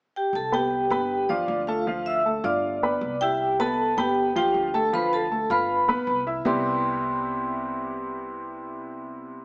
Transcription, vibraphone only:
0.16 0.34 G4 medium
0.16 0.33 G5 medium
0.35 0.44 A4 medium
0.35 0.44 A5 medium
0.54 0.89 G4 medium
0.54 0.91 G5 medium
0.92 1.28 G4 medium
0.92 1.27 G5 medium
1.29 1.65 D5 medium
1.29 1.65 D6 medium
1.67 2.04 F4 medium
1.67 2.07 F5 medium
2.06 2.42 E5 medium
2.06 2.42 E6 medium
2.45 3.23 D5 medium
2.45 3.18 D6 medium
3.21 3.57 G4 medium
3.21 3.56 G5 medium
3.60 3.96 A4 medium
3.60 3.99 A5 loud
3.98 4.34 G4 medium
3.98 4.33 G5 medium
4.36 4.72 G4 medium
4.36 4.75 G5 medium
4.74 4.92 A4 medium
4.74 4.92 A5 medium
4.94 5.03 B4 medium
4.94 5.02 B5 loud
5.13 5.49 A4 medium
5.13 5.48 A5 loud
5.51 6.24 B4 medium
5.51 6.23 B5 medium
6.47 9.45 C6 medium

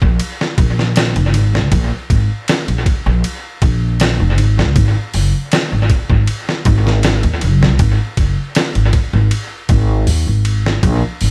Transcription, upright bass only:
0.02 0.18 A#1 loud
0.58 1.15 A#1 loud
1.16 1.33 F1 medium
1.33 1.55 G#1 loud
1.54 1.69 C#2 medium
1.72 1.89 A#1 loud
2.10 2.27 G#1 medium
2.68 2.84 A#1 medium
3.06 3.22 A#1 loud
3.62 4.19 A#1 loud
4.20 4.37 F1 medium
4.37 4.59 G#1 medium
4.57 4.73 C#2 medium
4.76 4.93 G#1 loud
5.14 5.31 F#1 medium
5.72 5.88 G#1 medium
6.10 6.25 G#1 loud
6.66 7.23 G#1 loud
7.24 7.43 D#2 medium
7.42 7.63 F#1 medium
7.61 7.77 C2 medium
7.79 7.97 G#1 loud
8.17 8.35 F#1 medium
8.75 8.91 G#1 medium
9.13 9.29 G#1 loud
9.69 10.06 G#1 loud
10.07 10.24 D#2 medium
10.27 10.80 G#1 medium
10.83 11.00 A#1 loud
11.21 11.31 G#1 medium

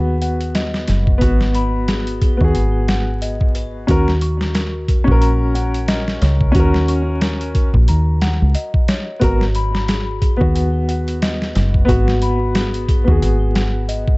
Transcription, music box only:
0.00 0.20 G#5 medium
0.22 0.52 F#5 medium
0.55 0.86 D#5 medium
0.88 1.20 B4 medium
1.21 1.54 F#4 medium
1.55 1.87 B5 medium
1.88 2.19 G#4 medium
2.21 2.54 G#4 medium
2.55 2.87 G#5 medium
2.88 3.19 F#5 medium
3.22 3.52 D#5 medium
3.55 3.87 B4 medium
3.89 4.20 F#4 medium
4.22 4.54 C#6 medium
4.55 4.85 A#4 medium
4.88 5.20 A#4 medium
5.21 5.54 A#5 medium
5.55 5.86 F#5 medium
5.88 6.19 D#5 medium
6.22 6.54 C#5 loud
6.55 6.87 F#4 medium
6.89 7.20 C#6 medium
7.22 7.52 A#4 loud
7.55 7.87 A#4 medium
7.88 8.20 A#5 medium
8.22 8.52 F#5 medium
8.55 8.86 D#5 medium
8.88 9.20 C#5 medium
9.22 9.54 F#4 medium
9.55 9.87 B5 medium
9.89 10.19 G#4 medium
10.22 10.54 G#4 medium
10.55 10.87 G#5 medium
10.89 11.19 F#5 medium
11.22 11.53 D#5 medium
11.55 11.87 B4 loud
11.88 12.20 F#4 medium
12.22 12.54 B5 medium
12.55 12.86 G#4 medium
12.89 13.21 G#4 medium
13.22 13.54 G#5 medium
13.55 13.86 F#5 medium
13.89 14.18 D#5 medium

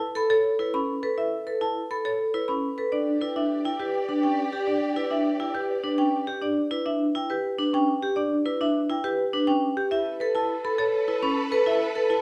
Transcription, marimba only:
0.16 0.35 B5 medium
0.30 0.49 A4 loud
0.60 0.79 B4 medium
0.74 0.93 B5 loud
1.03 1.22 A4 medium
1.18 1.37 E5 medium
1.47 1.66 B4 medium
1.61 1.80 A5 loud
1.91 2.10 B5 medium
2.05 2.24 A4 loud
2.34 2.53 B4 medium
2.48 2.68 B5 loud
2.78 2.97 A4 medium
2.92 3.11 D5 medium
3.21 3.40 B4 medium
3.36 3.55 E5 medium
3.65 3.84 G5 medium
3.79 3.99 G4 loud
4.09 4.28 B4 medium
4.23 4.42 G5 loud
4.53 4.72 G4 medium
4.67 4.86 D5 medium
4.96 5.15 B4 medium
5.11 5.30 E5 medium
5.40 5.59 G5 medium
5.54 5.74 G4 loud
5.84 6.03 B4 medium
5.98 6.17 G5 loud
6.29 6.47 G4 medium
6.42 6.61 D5 medium
6.71 6.90 B4 medium
6.86 7.05 E5 medium
7.16 7.34 G5 medium
7.30 7.49 G4 loud
7.59 7.78 B4 medium
7.74 7.92 G5 loud
8.03 8.22 G4 medium
8.16 8.36 D5 loud
8.45 8.65 B4 medium
8.61 8.80 E5 medium
8.90 9.09 G5 medium
9.04 9.23 G4 loud
9.34 9.52 B4 medium
9.47 9.67 G5 loud
9.77 9.96 G4 medium
9.91 10.10 E5 loud
10.20 10.39 B4 medium
10.35 10.54 A5 loud
10.64 10.83 B5 medium
10.78 10.98 A4 loud
11.08 11.27 B4 medium
11.23 11.42 B5 loud
11.52 11.71 A4 loud
11.67 11.86 E5 loud
11.96 12.15 B4 medium
12.11 12.22 A5 loud

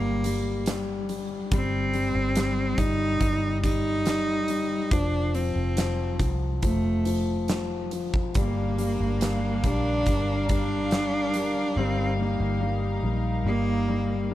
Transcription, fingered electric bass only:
0.00 1.48 G1 medium
1.52 2.11 G1 loud
2.15 2.74 G1 loud
2.78 3.18 G1 loud
3.21 4.87 G1 loud
4.91 5.51 F1 loud
5.56 6.16 F1 medium
6.20 6.60 C2 medium
6.62 8.31 F1 medium
8.35 8.96 G1 medium
9.00 9.60 G1 medium
9.64 10.04 A#1 medium
10.07 11.73 G1 medium
11.77 12.36 G1 loud
12.40 12.99 G1 medium
13.03 13.42 A#1 loud
13.44 14.34 G1 loud

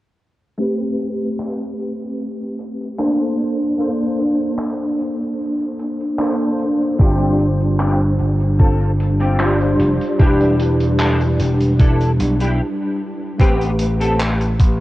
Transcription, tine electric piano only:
0.58 2.94 A3 medium
0.58 2.95 C4 medium
0.58 2.95 G4 medium
0.58 2.96 B4 medium
2.98 3.74 A#3 medium
2.98 3.75 D4 medium
2.98 3.75 A4 medium
2.98 3.75 C5 loud
3.78 6.14 A#3 medium
3.78 6.15 D4 medium
3.78 6.15 A4 medium
3.78 6.16 C5 medium
6.19 6.95 A#3 medium
6.19 6.95 D4 medium
6.19 6.95 A4 medium
6.19 6.95 C5 loud
6.98 9.34 G3 medium
6.98 9.35 D4 medium
6.98 9.35 F4 medium
6.98 9.36 C5 medium
9.39 10.15 G3 loud
9.39 10.15 D4 medium
9.39 10.15 F4 medium
9.39 10.15 C5 loud
10.18 12.54 G3 medium
10.18 12.55 D4 medium
10.18 12.55 E4 medium
10.18 12.56 B4 loud
13.38 14.80 A3 medium
13.38 14.80 G4 medium
13.38 14.80 B4 medium

